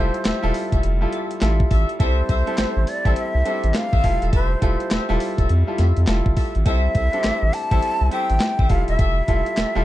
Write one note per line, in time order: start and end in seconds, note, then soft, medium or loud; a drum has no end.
0.00 0.10 F1 loud
0.00 0.42 G3 medium
0.00 0.43 E4 medium
0.00 0.43 F4 medium
0.00 0.14 G4 medium
0.00 0.14 A4 medium
0.00 0.44 A4 medium
0.00 0.84 C5 medium
0.00 0.14 E5 medium
0.14 closed hi-hat soft
0.25 0.33 E1 soft
0.25 0.43 G4 medium
0.25 0.43 A4 medium
0.25 0.43 E5 medium
0.25 snare loud
0.25 clap medium
0.25 closed hi-hat medium
0.42 0.52 E1 medium
0.42 0.87 G3 loud
0.42 0.87 E4 medium
0.42 0.87 F4 medium
0.42 0.87 A4 loud
0.54 open hi-hat medium
0.72 0.81 F1 medium
0.72 0.83 G4 medium
0.72 0.83 A4 medium
0.72 0.83 E5 medium
0.72 kick medium
0.72 closed hi-hat medium
0.83 1.06 F1 loud
0.83 closed hi-hat medium
1.01 1.35 G3 medium
1.01 1.35 E4 medium
1.01 1.35 F4 medium
1.01 1.35 A4 medium
1.12 1.30 G4 medium
1.12 1.30 A4 medium
1.12 1.30 E5 medium
1.12 closed hi-hat medium
1.31 closed hi-hat medium
1.41 1.64 A1 loud
1.41 1.91 G3 medium
1.41 1.91 E4 medium
1.41 1.91 F4 medium
1.41 1.91 A4 medium
1.41 snare loud
1.41 clap medium
1.41 closed hi-hat medium
1.60 kick medium
1.70 1.85 A1 medium
1.70 1.88 G4 medium
1.70 1.88 A4 medium
1.70 1.89 E5 medium
1.70 kick medium
1.70 open hi-hat medium
1.89 closed hi-hat medium
1.99 2.22 C2 loud
1.99 2.36 G3 medium
1.99 2.36 C4 medium
1.99 2.36 E4 medium
1.99 2.17 A4 medium
1.99 2.37 A4 loud
1.99 2.18 C5 medium
1.99 2.90 C5 medium
1.99 2.18 E5 loud
1.99 kick loud
1.99 closed hi-hat medium
2.29 2.43 C2 medium
2.29 2.47 A4 medium
2.29 2.47 C5 medium
2.29 2.47 E5 medium
2.29 kick medium
2.29 closed hi-hat medium
2.46 2.91 G3 medium
2.46 2.91 C4 medium
2.46 2.91 E4 medium
2.46 2.91 A4 medium
2.46 closed hi-hat soft
2.58 2.66 A1 soft
2.58 2.76 A4 medium
2.58 2.76 C5 medium
2.58 2.76 E5 medium
2.58 snare loud
2.58 clap medium
2.58 closed hi-hat medium
2.77 2.85 A1 medium
2.87 3.17 D5 medium
2.87 open hi-hat medium
3.05 3.14 A1 medium
3.05 3.39 G3 medium
3.05 3.39 C4 medium
3.05 3.39 E4 medium
3.05 3.16 A4 medium
3.05 3.39 A4 loud
3.05 3.16 C5 medium
3.05 3.16 E5 medium
3.05 kick medium
3.05 closed hi-hat medium
3.16 3.78 E5 loud
3.16 closed hi-hat medium
3.35 3.43 C2 medium
3.45 3.95 G3 medium
3.45 3.95 C4 medium
3.45 3.54 D4 medium
3.45 3.63 A4 medium
3.45 3.95 A4 medium
3.45 3.63 C5 medium
3.45 3.64 E5 medium
3.45 closed hi-hat medium
3.52 3.98 E4 medium
3.64 3.72 A1 medium
3.64 closed hi-hat medium
3.74 4.34 F5 loud
3.74 snare loud
3.74 clap medium
3.74 closed hi-hat medium
3.93 4.02 A1 medium
3.93 4.03 A4 medium
3.93 4.04 C5 medium
3.93 4.04 E5 medium
3.93 kick medium
4.03 4.18 F1 loud
4.03 4.53 G3 medium
4.03 4.53 E4 medium
4.03 4.53 F4 medium
4.03 4.54 A4 medium
4.03 kick medium
4.03 open hi-hat medium
4.21 4.31 E1 medium
4.21 4.31 G4 medium
4.21 4.32 A4 medium
4.21 4.32 E5 medium
4.21 closed hi-hat soft
4.32 4.55 F1 loud
4.32 4.50 G4 medium
4.32 4.51 A4 medium
4.32 5.46 C5 medium
4.32 4.51 E5 loud
4.32 kick loud
4.32 closed hi-hat medium
4.61 4.76 F1 medium
4.61 4.98 G3 medium
4.61 4.98 E4 medium
4.61 4.99 F4 medium
4.61 4.80 G4 medium
4.61 4.80 A4 medium
4.61 4.99 A4 medium
4.61 4.80 E5 medium
4.61 kick medium
4.61 closed hi-hat medium
4.80 closed hi-hat medium
4.91 4.99 E1 medium
4.91 5.09 G4 medium
4.91 5.09 A4 medium
4.91 5.09 E5 medium
4.91 snare loud
4.91 clap medium
4.91 closed hi-hat medium
5.09 5.18 E1 medium
5.09 5.53 G3 loud
5.09 5.53 E4 loud
5.09 5.53 F4 medium
5.09 5.53 A4 loud
5.20 open hi-hat medium
5.38 5.47 F1 medium
5.38 5.49 G4 medium
5.38 5.49 A4 medium
5.38 5.49 E5 medium
5.38 kick medium
5.38 closed hi-hat medium
5.49 5.64 F2 loud
5.49 closed hi-hat medium
5.67 6.01 G3 medium
5.67 6.01 E4 medium
5.67 6.01 F4 medium
5.67 6.01 A4 medium
5.78 5.93 F2 loud
5.78 5.96 G4 medium
5.78 5.96 A4 medium
5.78 5.96 E5 medium
5.78 snare medium
5.78 closed hi-hat medium
5.97 6.06 F2 medium
5.97 closed hi-hat medium
6.07 6.22 F1 loud
6.07 6.57 G3 medium
6.07 6.57 E4 medium
6.07 6.57 F4 medium
6.07 6.58 A4 medium
6.07 snare loud
6.07 clap medium
6.07 closed hi-hat medium
6.26 6.34 G1 medium
6.26 kick loud
6.36 6.54 G4 medium
6.36 6.54 A4 medium
6.36 6.55 E5 medium
6.36 kick medium
6.36 open hi-hat medium
6.55 6.64 A1 medium
6.55 closed hi-hat soft
6.65 6.88 C2 loud
6.65 7.02 G3 medium
6.65 7.02 C4 medium
6.65 7.02 E4 medium
6.65 6.84 A4 medium
6.65 7.03 A4 medium
6.65 6.84 C5 medium
6.65 6.84 E5 loud
6.65 7.55 E5 medium
6.65 kick loud
6.65 closed hi-hat medium
6.95 7.09 C2 loud
6.95 7.13 A4 medium
6.95 7.13 C5 medium
6.95 7.13 E5 medium
6.95 kick medium
6.95 closed hi-hat medium
7.13 7.57 G3 medium
7.13 7.57 C4 medium
7.13 7.18 D4 medium
7.13 7.57 A4 medium
7.13 closed hi-hat soft
7.20 7.60 E4 medium
7.24 7.32 A1 medium
7.24 7.42 A4 medium
7.24 7.42 C5 medium
7.24 7.42 E5 medium
7.24 snare loud
7.24 clap medium
7.24 closed hi-hat medium
7.43 7.51 A1 loud
7.53 8.12 A5 loud
7.53 open hi-hat medium
7.71 7.80 A1 medium
7.71 8.05 G3 medium
7.71 8.05 C4 medium
7.71 8.05 E4 medium
7.71 7.82 A4 medium
7.71 8.05 A4 loud
7.71 7.82 C5 medium
7.71 7.82 E5 medium
7.71 kick medium
7.71 closed hi-hat medium
7.83 closed hi-hat medium
8.01 8.09 C2 loud
8.11 8.61 G3 medium
8.11 8.61 C4 medium
8.11 8.61 E4 medium
8.11 8.29 A4 medium
8.11 8.61 A4 medium
8.11 8.29 C5 medium
8.11 8.30 E5 medium
8.11 8.72 G5 loud
8.11 closed hi-hat medium
8.30 8.39 A1 medium
8.30 closed hi-hat medium
8.40 snare loud
8.40 clap medium
8.40 closed hi-hat medium
8.59 8.68 A1 medium
8.59 8.70 A4 medium
8.59 8.70 C5 medium
8.59 8.70 E5 medium
8.59 kick loud
8.69 8.84 F1 loud
8.69 9.19 G3 medium
8.69 9.19 E4 medium
8.69 9.20 F4 medium
8.69 9.20 A4 medium
8.69 8.88 F5 medium
8.69 kick medium
8.69 open hi-hat medium
8.88 8.97 E1 medium
8.88 8.98 G4 medium
8.88 8.98 A4 medium
8.88 9.85 E5 loud
8.88 8.98 E5 medium
8.88 closed hi-hat medium
8.99 9.21 F1 loud
8.99 9.17 G4 loud
8.99 9.17 A4 medium
8.99 9.17 E5 loud
8.99 kick loud
8.99 closed hi-hat medium
9.28 9.42 F1 loud
9.28 9.64 G3 medium
9.28 9.64 E4 medium
9.28 9.65 F4 medium
9.28 9.46 G4 medium
9.28 9.46 A4 medium
9.28 9.65 A4 medium
9.28 9.46 E5 medium
9.28 kick medium
9.28 closed hi-hat medium
9.46 closed hi-hat soft
9.57 9.65 E1 medium
9.57 9.75 G4 medium
9.57 9.75 A4 medium
9.57 9.75 E5 medium
9.57 snare loud
9.57 clap medium
9.57 closed hi-hat medium
9.75 9.84 E1 medium
9.75 9.85 G3 loud
9.75 9.85 E4 medium
9.75 9.85 F4 loud
9.75 9.85 A4 loud